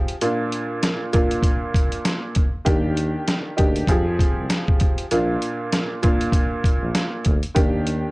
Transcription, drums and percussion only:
0.08 closed hi-hat
0.21 closed hi-hat
0.52 closed hi-hat
0.83 snare, closed hi-hat
1.13 kick, closed hi-hat
1.31 closed hi-hat
1.43 kick, closed hi-hat
1.74 kick, closed hi-hat
1.92 closed hi-hat
2.05 snare, closed hi-hat
2.35 kick, closed hi-hat
2.66 kick, closed hi-hat
2.97 closed hi-hat
3.28 snare, closed hi-hat
3.58 kick, closed hi-hat
3.76 closed hi-hat
3.87 kick, closed hi-hat
4.19 kick, closed hi-hat
4.50 snare, closed hi-hat
4.68 kick
4.80 kick, closed hi-hat
4.98 closed hi-hat
5.11 closed hi-hat
5.42 closed hi-hat
5.72 snare, closed hi-hat
6.03 kick, closed hi-hat
6.21 closed hi-hat
6.32 kick, closed hi-hat
6.64 kick, closed hi-hat
6.95 snare, closed hi-hat
7.25 kick, closed hi-hat
7.43 closed hi-hat
7.56 kick, closed hi-hat
7.87 closed hi-hat

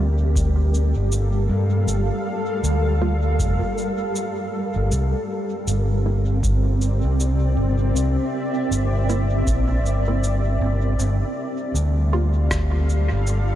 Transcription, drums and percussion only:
0.36 kick, cabasa
0.74 cabasa
1.12 cabasa
1.88 cabasa
2.64 cabasa
3.39 kick, cabasa
3.78 cabasa
4.16 cabasa
4.92 cabasa
5.67 cabasa
6.43 kick, cabasa
6.81 cabasa
7.20 cabasa
7.96 cabasa
8.72 cabasa
9.09 cabasa
9.47 kick, cabasa
9.86 cabasa
10.24 cabasa
10.99 cabasa
11.75 cabasa
12.51 kick, cross-stick, cabasa
12.89 cabasa
13.27 cabasa

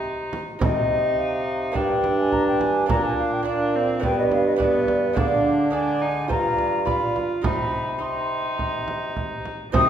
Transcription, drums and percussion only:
0.33 frame drum
0.61 frame drum
1.75 frame drum
2.04 frame drum
2.32 frame drum
2.61 frame drum
2.90 frame drum
4.03 frame drum
4.31 frame drum
4.60 frame drum
4.88 frame drum
5.17 frame drum
6.30 frame drum
6.58 frame drum
6.87 frame drum
7.16 frame drum
7.44 frame drum
8.59 frame drum
8.88 frame drum
9.17 frame drum
9.45 frame drum
9.74 frame drum

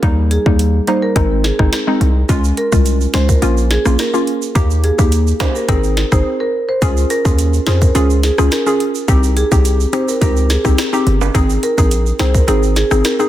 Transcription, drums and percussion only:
0.03 kick, closed hi-hat
0.31 closed hi-hat
0.46 kick
0.59 closed hi-hat
0.87 closed hi-hat
1.16 kick, closed hi-hat
1.44 snare, closed hi-hat
1.59 kick, cross-stick
1.73 cross-stick, snare, closed hi-hat
2.01 closed hi-hat
2.29 kick, closed hi-hat, shaker
2.44 shaker
2.57 closed hi-hat
2.72 kick, shaker
2.86 closed hi-hat, shaker
3.01 shaker
3.14 cross-stick, snare, closed hi-hat, shaker
3.29 kick, shaker
3.42 closed hi-hat, shaker
3.57 shaker
3.71 snare, closed hi-hat
3.86 cross-stick, shaker
3.99 cross-stick, snare, closed hi-hat, shaker
4.14 shaker
4.27 closed hi-hat
4.42 shaker
4.55 kick, closed hi-hat, shaker
4.70 shaker
4.84 closed hi-hat
4.99 kick, shaker
5.12 closed hi-hat, shaker
5.27 shaker
5.40 kick, cross-stick, snare, closed hi-hat, high timbale, shaker
5.55 shaker
5.69 kick, closed hi-hat, shaker
5.84 shaker
5.97 snare, closed hi-hat
6.12 kick, cross-stick, shaker
6.82 kick, closed hi-hat, shaker
6.97 shaker
7.10 closed hi-hat, shaker
7.25 kick, shaker
7.39 closed hi-hat, shaker
7.54 shaker
7.67 cross-stick, snare, closed hi-hat, shaker
7.82 kick, shaker
7.95 closed hi-hat, shaker
8.10 shaker
8.23 snare, closed hi-hat, shaker
8.38 cross-stick, shaker
8.52 cross-stick, snare, closed hi-hat, shaker
8.67 shaker
8.80 closed hi-hat
8.95 shaker
9.08 kick, closed hi-hat, shaker
9.23 shaker
9.37 closed hi-hat, shaker
9.52 kick, shaker
9.65 closed hi-hat, shaker
9.80 shaker
9.93 closed hi-hat, shaker
10.08 shaker
10.22 kick, closed hi-hat, shaker
10.37 shaker
10.50 snare, closed hi-hat, shaker
10.65 kick, cross-stick, shaker
10.78 cross-stick, snare, closed hi-hat, shaker
10.93 shaker
11.07 closed hi-hat
11.21 high timbale, shaker
11.35 kick, closed hi-hat, shaker
11.50 shaker
11.63 closed hi-hat, shaker
11.78 kick, shaker
11.91 closed hi-hat, shaker
12.06 shaker
12.19 cross-stick, snare, closed hi-hat, shaker
12.35 kick, shaker
12.48 closed hi-hat, shaker
12.63 shaker
12.76 snare, closed hi-hat, shaker
12.91 cross-stick, shaker
13.05 cross-stick, snare, closed hi-hat, shaker
13.20 shaker

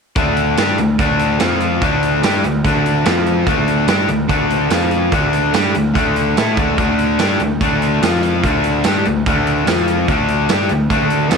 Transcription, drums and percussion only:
0.16 kick, closed hi-hat
0.37 closed hi-hat
0.57 snare, closed hi-hat, tambourine
0.78 closed hi-hat
0.99 kick, closed hi-hat
1.19 closed hi-hat
1.40 snare, closed hi-hat, tambourine
1.60 closed hi-hat
1.82 kick, closed hi-hat
2.03 closed hi-hat
2.23 snare, closed hi-hat, tambourine
2.44 closed hi-hat
2.65 kick, closed hi-hat
2.86 closed hi-hat
3.06 snare, closed hi-hat, tambourine
3.26 closed hi-hat
3.47 kick, closed hi-hat
3.68 closed hi-hat
3.88 snare, closed hi-hat, tambourine
4.08 closed hi-hat
4.29 kick, closed hi-hat
4.50 closed hi-hat
4.70 snare, closed hi-hat, tambourine
4.91 closed hi-hat
5.12 kick, closed hi-hat
5.33 closed hi-hat
5.54 snare, closed hi-hat, tambourine
5.75 closed hi-hat
5.95 kick, closed hi-hat
6.16 closed hi-hat
6.37 snare, closed hi-hat, tambourine
6.57 kick, closed hi-hat
6.78 kick, closed hi-hat
6.99 closed hi-hat
7.19 snare, closed hi-hat, tambourine
7.40 closed hi-hat
7.61 kick, closed hi-hat
7.82 closed hi-hat
8.03 snare, closed hi-hat, tambourine
8.23 closed hi-hat
8.44 kick, closed hi-hat
8.64 closed hi-hat
8.84 snare, closed hi-hat, tambourine
9.05 closed hi-hat
9.26 kick, closed hi-hat
9.47 closed hi-hat
9.67 snare, closed hi-hat, tambourine
9.88 closed hi-hat
10.08 kick, closed hi-hat
10.28 closed hi-hat
10.49 snare, closed hi-hat, tambourine
10.69 closed hi-hat
10.90 kick, closed hi-hat
11.10 closed hi-hat
11.31 snare, closed hi-hat, tambourine

